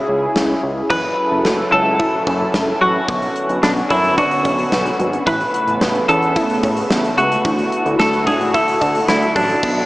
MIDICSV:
0, 0, Header, 1, 6, 480
1, 0, Start_track
1, 0, Tempo, 545455
1, 796, Time_signature, 4, 2, 24, 8
1, 8674, End_track
2, 0, Start_track
2, 0, Title_t, "Clean electric guitar"
2, 0, Program_c, 0, 27
2, 797, Note_on_c, 0, 71, 106
2, 1512, Note_off_c, 0, 71, 0
2, 1516, Note_on_c, 0, 69, 100
2, 2473, Note_off_c, 0, 69, 0
2, 2477, Note_on_c, 0, 66, 92
2, 3196, Note_on_c, 0, 62, 84
2, 3218, Note_off_c, 0, 66, 0
2, 3261, Note_off_c, 0, 62, 0
2, 3436, Note_on_c, 0, 64, 86
2, 3673, Note_off_c, 0, 64, 0
2, 3677, Note_on_c, 0, 66, 80
2, 4361, Note_off_c, 0, 66, 0
2, 4641, Note_on_c, 0, 71, 114
2, 5323, Note_off_c, 0, 71, 0
2, 5358, Note_on_c, 0, 69, 104
2, 6314, Note_off_c, 0, 69, 0
2, 6318, Note_on_c, 0, 66, 90
2, 7002, Note_off_c, 0, 66, 0
2, 7037, Note_on_c, 0, 69, 93
2, 7272, Note_off_c, 0, 69, 0
2, 7275, Note_on_c, 0, 68, 88
2, 7514, Note_off_c, 0, 68, 0
2, 7517, Note_on_c, 0, 69, 86
2, 7996, Note_on_c, 0, 64, 92
2, 8201, Note_off_c, 0, 69, 0
2, 8219, Note_off_c, 0, 64, 0
2, 8236, Note_on_c, 0, 62, 89
2, 8674, Note_off_c, 0, 62, 0
2, 8674, End_track
3, 0, Start_track
3, 0, Title_t, "Analog synth pad"
3, 0, Program_c, 1, 89
3, 0, Note_on_c, 1, 49, 78
3, 0, Note_on_c, 1, 61, 69
3, 0, Note_on_c, 1, 64, 71
3, 0, Note_on_c, 1, 68, 87
3, 777, Note_off_c, 1, 49, 0
3, 777, Note_off_c, 1, 68, 0
3, 778, Note_off_c, 1, 61, 0
3, 778, Note_off_c, 1, 64, 0
3, 797, Note_on_c, 1, 61, 73
3, 797, Note_on_c, 1, 64, 70
3, 798, Note_on_c, 1, 69, 86
3, 799, Note_on_c, 1, 54, 75
3, 2697, Note_off_c, 1, 64, 0
3, 2697, Note_off_c, 1, 69, 0
3, 2698, Note_off_c, 1, 54, 0
3, 2712, Note_on_c, 1, 59, 71
3, 2714, Note_on_c, 1, 50, 80
3, 4601, Note_off_c, 1, 61, 0
3, 4615, Note_off_c, 1, 59, 0
3, 4616, Note_off_c, 1, 50, 0
3, 4636, Note_on_c, 1, 49, 78
3, 4636, Note_on_c, 1, 59, 88
3, 4637, Note_on_c, 1, 57, 73
3, 6537, Note_off_c, 1, 49, 0
3, 6537, Note_off_c, 1, 59, 0
3, 6554, Note_on_c, 1, 64, 73
3, 6555, Note_on_c, 1, 50, 77
3, 6555, Note_on_c, 1, 66, 85
3, 8441, Note_off_c, 1, 57, 0
3, 8456, Note_off_c, 1, 50, 0
3, 8456, Note_off_c, 1, 64, 0
3, 8456, Note_off_c, 1, 66, 0
3, 8475, Note_on_c, 1, 50, 81
3, 8475, Note_on_c, 1, 59, 71
3, 8476, Note_on_c, 1, 73, 88
3, 8674, Note_off_c, 1, 50, 0
3, 8674, Note_off_c, 1, 59, 0
3, 8674, Note_off_c, 1, 73, 0
3, 8674, End_track
4, 0, Start_track
4, 0, Title_t, "Synth arpeggio sound"
4, 0, Program_c, 2, 84
4, 796, Note_on_c, 2, 52, 95
4, 919, Note_off_c, 2, 52, 0
4, 1275, Note_on_c, 2, 57, 91
4, 1398, Note_off_c, 2, 57, 0
4, 1515, Note_on_c, 2, 61, 81
4, 1638, Note_off_c, 2, 61, 0
4, 1754, Note_on_c, 2, 64, 97
4, 1877, Note_off_c, 2, 64, 0
4, 1996, Note_on_c, 2, 61, 85
4, 2119, Note_off_c, 2, 61, 0
4, 2236, Note_on_c, 2, 57, 86
4, 2359, Note_off_c, 2, 57, 0
4, 2476, Note_on_c, 2, 54, 79
4, 2598, Note_off_c, 2, 54, 0
4, 2716, Note_on_c, 2, 50, 92
4, 2839, Note_off_c, 2, 50, 0
4, 3195, Note_on_c, 2, 59, 92
4, 3318, Note_off_c, 2, 59, 0
4, 3436, Note_on_c, 2, 61, 85
4, 3559, Note_off_c, 2, 61, 0
4, 3675, Note_on_c, 2, 62, 101
4, 3798, Note_off_c, 2, 62, 0
4, 3915, Note_on_c, 2, 61, 83
4, 4038, Note_off_c, 2, 61, 0
4, 4156, Note_on_c, 2, 59, 88
4, 4279, Note_off_c, 2, 59, 0
4, 4396, Note_on_c, 2, 54, 79
4, 4519, Note_off_c, 2, 54, 0
4, 4635, Note_on_c, 2, 52, 95
4, 4758, Note_off_c, 2, 52, 0
4, 5116, Note_on_c, 2, 59, 91
4, 5238, Note_off_c, 2, 59, 0
4, 5358, Note_on_c, 2, 61, 85
4, 5481, Note_off_c, 2, 61, 0
4, 5596, Note_on_c, 2, 64, 103
4, 5719, Note_off_c, 2, 64, 0
4, 5835, Note_on_c, 2, 61, 86
4, 5958, Note_off_c, 2, 61, 0
4, 6076, Note_on_c, 2, 59, 90
4, 6199, Note_off_c, 2, 59, 0
4, 6315, Note_on_c, 2, 57, 81
4, 6438, Note_off_c, 2, 57, 0
4, 6554, Note_on_c, 2, 52, 91
4, 6677, Note_off_c, 2, 52, 0
4, 7034, Note_on_c, 2, 57, 93
4, 7157, Note_off_c, 2, 57, 0
4, 7275, Note_on_c, 2, 62, 86
4, 7398, Note_off_c, 2, 62, 0
4, 7515, Note_on_c, 2, 64, 101
4, 7638, Note_off_c, 2, 64, 0
4, 7753, Note_on_c, 2, 62, 84
4, 7877, Note_off_c, 2, 62, 0
4, 7995, Note_on_c, 2, 57, 90
4, 8118, Note_off_c, 2, 57, 0
4, 8234, Note_on_c, 2, 54, 82
4, 8357, Note_off_c, 2, 54, 0
4, 8674, End_track
5, 0, Start_track
5, 0, Title_t, "Analog synth bass"
5, 0, Program_c, 3, 38
5, 75, Note_on_c, 3, 37, 96
5, 243, Note_off_c, 3, 37, 0
5, 315, Note_on_c, 3, 37, 103
5, 483, Note_off_c, 3, 37, 0
5, 555, Note_on_c, 3, 37, 95
5, 724, Note_off_c, 3, 37, 0
5, 795, Note_on_c, 3, 30, 100
5, 963, Note_off_c, 3, 30, 0
5, 1155, Note_on_c, 3, 30, 91
5, 1239, Note_off_c, 3, 30, 0
5, 1274, Note_on_c, 3, 30, 98
5, 1443, Note_off_c, 3, 30, 0
5, 1513, Note_on_c, 3, 37, 98
5, 1766, Note_off_c, 3, 37, 0
5, 1998, Note_on_c, 3, 30, 106
5, 2165, Note_off_c, 3, 30, 0
5, 2234, Note_on_c, 3, 30, 96
5, 2403, Note_off_c, 3, 30, 0
5, 2475, Note_on_c, 3, 33, 88
5, 2643, Note_off_c, 3, 33, 0
5, 2714, Note_on_c, 3, 35, 105
5, 2882, Note_off_c, 3, 35, 0
5, 3075, Note_on_c, 3, 35, 91
5, 3159, Note_off_c, 3, 35, 0
5, 3194, Note_on_c, 3, 35, 100
5, 3362, Note_off_c, 3, 35, 0
5, 3436, Note_on_c, 3, 42, 93
5, 3688, Note_off_c, 3, 42, 0
5, 3917, Note_on_c, 3, 35, 97
5, 4085, Note_off_c, 3, 35, 0
5, 4154, Note_on_c, 3, 35, 98
5, 4323, Note_off_c, 3, 35, 0
5, 4394, Note_on_c, 3, 32, 94
5, 4563, Note_off_c, 3, 32, 0
5, 4636, Note_on_c, 3, 33, 102
5, 4804, Note_off_c, 3, 33, 0
5, 4994, Note_on_c, 3, 33, 96
5, 5078, Note_off_c, 3, 33, 0
5, 5114, Note_on_c, 3, 33, 99
5, 5282, Note_off_c, 3, 33, 0
5, 5354, Note_on_c, 3, 40, 88
5, 5607, Note_off_c, 3, 40, 0
5, 5838, Note_on_c, 3, 33, 104
5, 6005, Note_off_c, 3, 33, 0
5, 6073, Note_on_c, 3, 33, 100
5, 6242, Note_off_c, 3, 33, 0
5, 6313, Note_on_c, 3, 37, 89
5, 6482, Note_off_c, 3, 37, 0
5, 6556, Note_on_c, 3, 38, 101
5, 6724, Note_off_c, 3, 38, 0
5, 6915, Note_on_c, 3, 38, 97
5, 6999, Note_off_c, 3, 38, 0
5, 7034, Note_on_c, 3, 38, 99
5, 7276, Note_on_c, 3, 45, 97
5, 7290, Note_off_c, 3, 38, 0
5, 7528, Note_off_c, 3, 45, 0
5, 7757, Note_on_c, 3, 38, 98
5, 7925, Note_off_c, 3, 38, 0
5, 7994, Note_on_c, 3, 38, 95
5, 8163, Note_off_c, 3, 38, 0
5, 8235, Note_on_c, 3, 33, 91
5, 8404, Note_off_c, 3, 33, 0
5, 8475, Note_on_c, 3, 35, 104
5, 8643, Note_off_c, 3, 35, 0
5, 8674, End_track
6, 0, Start_track
6, 0, Title_t, "Drums"
6, 315, Note_on_c, 9, 38, 108
6, 403, Note_off_c, 9, 38, 0
6, 795, Note_on_c, 9, 36, 114
6, 795, Note_on_c, 9, 49, 88
6, 883, Note_off_c, 9, 36, 0
6, 883, Note_off_c, 9, 49, 0
6, 1275, Note_on_c, 9, 38, 116
6, 1363, Note_off_c, 9, 38, 0
6, 1758, Note_on_c, 9, 36, 97
6, 1846, Note_off_c, 9, 36, 0
6, 1997, Note_on_c, 9, 36, 91
6, 2085, Note_off_c, 9, 36, 0
6, 2236, Note_on_c, 9, 38, 114
6, 2324, Note_off_c, 9, 38, 0
6, 2714, Note_on_c, 9, 42, 71
6, 2715, Note_on_c, 9, 36, 123
6, 2802, Note_off_c, 9, 42, 0
6, 2803, Note_off_c, 9, 36, 0
6, 2835, Note_on_c, 9, 42, 49
6, 2923, Note_off_c, 9, 42, 0
6, 2954, Note_on_c, 9, 42, 83
6, 3042, Note_off_c, 9, 42, 0
6, 3074, Note_on_c, 9, 42, 53
6, 3162, Note_off_c, 9, 42, 0
6, 3194, Note_on_c, 9, 38, 119
6, 3195, Note_on_c, 9, 42, 70
6, 3282, Note_off_c, 9, 38, 0
6, 3283, Note_off_c, 9, 42, 0
6, 3315, Note_on_c, 9, 42, 41
6, 3403, Note_off_c, 9, 42, 0
6, 3435, Note_on_c, 9, 42, 71
6, 3436, Note_on_c, 9, 36, 86
6, 3523, Note_off_c, 9, 42, 0
6, 3524, Note_off_c, 9, 36, 0
6, 3556, Note_on_c, 9, 42, 42
6, 3644, Note_off_c, 9, 42, 0
6, 3675, Note_on_c, 9, 42, 72
6, 3678, Note_on_c, 9, 36, 98
6, 3763, Note_off_c, 9, 42, 0
6, 3766, Note_off_c, 9, 36, 0
6, 3795, Note_on_c, 9, 42, 56
6, 3883, Note_off_c, 9, 42, 0
6, 3914, Note_on_c, 9, 42, 67
6, 3917, Note_on_c, 9, 36, 89
6, 4002, Note_off_c, 9, 42, 0
6, 4005, Note_off_c, 9, 36, 0
6, 4035, Note_on_c, 9, 42, 54
6, 4123, Note_off_c, 9, 42, 0
6, 4155, Note_on_c, 9, 38, 114
6, 4155, Note_on_c, 9, 42, 83
6, 4243, Note_off_c, 9, 38, 0
6, 4243, Note_off_c, 9, 42, 0
6, 4277, Note_on_c, 9, 42, 56
6, 4365, Note_off_c, 9, 42, 0
6, 4396, Note_on_c, 9, 42, 67
6, 4484, Note_off_c, 9, 42, 0
6, 4517, Note_on_c, 9, 42, 56
6, 4605, Note_off_c, 9, 42, 0
6, 4635, Note_on_c, 9, 36, 119
6, 4636, Note_on_c, 9, 42, 73
6, 4723, Note_off_c, 9, 36, 0
6, 4724, Note_off_c, 9, 42, 0
6, 4757, Note_on_c, 9, 42, 50
6, 4845, Note_off_c, 9, 42, 0
6, 4876, Note_on_c, 9, 42, 86
6, 4964, Note_off_c, 9, 42, 0
6, 4995, Note_on_c, 9, 42, 52
6, 5083, Note_off_c, 9, 42, 0
6, 5115, Note_on_c, 9, 38, 115
6, 5116, Note_on_c, 9, 42, 71
6, 5203, Note_off_c, 9, 38, 0
6, 5204, Note_off_c, 9, 42, 0
6, 5236, Note_on_c, 9, 42, 42
6, 5324, Note_off_c, 9, 42, 0
6, 5356, Note_on_c, 9, 42, 70
6, 5444, Note_off_c, 9, 42, 0
6, 5478, Note_on_c, 9, 42, 42
6, 5566, Note_off_c, 9, 42, 0
6, 5595, Note_on_c, 9, 42, 75
6, 5598, Note_on_c, 9, 36, 99
6, 5683, Note_off_c, 9, 42, 0
6, 5686, Note_off_c, 9, 36, 0
6, 5718, Note_on_c, 9, 42, 55
6, 5806, Note_off_c, 9, 42, 0
6, 5837, Note_on_c, 9, 42, 66
6, 5838, Note_on_c, 9, 36, 94
6, 5925, Note_off_c, 9, 42, 0
6, 5926, Note_off_c, 9, 36, 0
6, 5956, Note_on_c, 9, 42, 58
6, 6044, Note_off_c, 9, 42, 0
6, 6076, Note_on_c, 9, 38, 108
6, 6076, Note_on_c, 9, 42, 82
6, 6164, Note_off_c, 9, 38, 0
6, 6164, Note_off_c, 9, 42, 0
6, 6198, Note_on_c, 9, 42, 57
6, 6286, Note_off_c, 9, 42, 0
6, 6316, Note_on_c, 9, 42, 70
6, 6404, Note_off_c, 9, 42, 0
6, 6439, Note_on_c, 9, 42, 54
6, 6527, Note_off_c, 9, 42, 0
6, 6556, Note_on_c, 9, 36, 121
6, 6556, Note_on_c, 9, 42, 75
6, 6644, Note_off_c, 9, 36, 0
6, 6644, Note_off_c, 9, 42, 0
6, 6677, Note_on_c, 9, 42, 51
6, 6765, Note_off_c, 9, 42, 0
6, 6796, Note_on_c, 9, 42, 86
6, 6884, Note_off_c, 9, 42, 0
6, 6916, Note_on_c, 9, 42, 56
6, 7004, Note_off_c, 9, 42, 0
6, 7036, Note_on_c, 9, 38, 116
6, 7036, Note_on_c, 9, 42, 71
6, 7124, Note_off_c, 9, 38, 0
6, 7124, Note_off_c, 9, 42, 0
6, 7157, Note_on_c, 9, 42, 43
6, 7245, Note_off_c, 9, 42, 0
6, 7277, Note_on_c, 9, 36, 87
6, 7278, Note_on_c, 9, 42, 68
6, 7365, Note_off_c, 9, 36, 0
6, 7366, Note_off_c, 9, 42, 0
6, 7399, Note_on_c, 9, 42, 41
6, 7487, Note_off_c, 9, 42, 0
6, 7517, Note_on_c, 9, 42, 72
6, 7519, Note_on_c, 9, 36, 94
6, 7605, Note_off_c, 9, 42, 0
6, 7607, Note_off_c, 9, 36, 0
6, 7638, Note_on_c, 9, 42, 58
6, 7726, Note_off_c, 9, 42, 0
6, 7754, Note_on_c, 9, 42, 67
6, 7758, Note_on_c, 9, 36, 91
6, 7842, Note_off_c, 9, 42, 0
6, 7846, Note_off_c, 9, 36, 0
6, 7875, Note_on_c, 9, 42, 57
6, 7963, Note_off_c, 9, 42, 0
6, 7994, Note_on_c, 9, 38, 110
6, 7994, Note_on_c, 9, 42, 83
6, 8082, Note_off_c, 9, 38, 0
6, 8082, Note_off_c, 9, 42, 0
6, 8116, Note_on_c, 9, 42, 59
6, 8204, Note_off_c, 9, 42, 0
6, 8234, Note_on_c, 9, 46, 69
6, 8235, Note_on_c, 9, 36, 94
6, 8322, Note_off_c, 9, 46, 0
6, 8323, Note_off_c, 9, 36, 0
6, 8356, Note_on_c, 9, 42, 55
6, 8444, Note_off_c, 9, 42, 0
6, 8475, Note_on_c, 9, 49, 98
6, 8476, Note_on_c, 9, 36, 120
6, 8563, Note_off_c, 9, 49, 0
6, 8564, Note_off_c, 9, 36, 0
6, 8674, End_track
0, 0, End_of_file